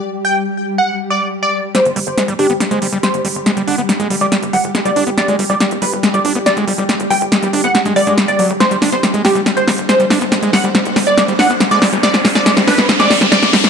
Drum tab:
HH |----------------|xxoxxxoxxxoxxxox|xxoxxxoxxxoxxxox|xxoxxxoxxxoxxxox|
SD |----------------|o---o---o---o---|o---o---o---o---|o---o---o---o---|

HH |xxoxxxoxxxoxxxox|xxoxxxoxxxoxxxox|xxoxxxoxxxoxxxox|xxoxxxoxxxo-xxox|
SD |o---o---o---o---|o-o-o-o-o-o-o-o-|o-o-o-o-o-o-o-o-|oooooooooooooooo|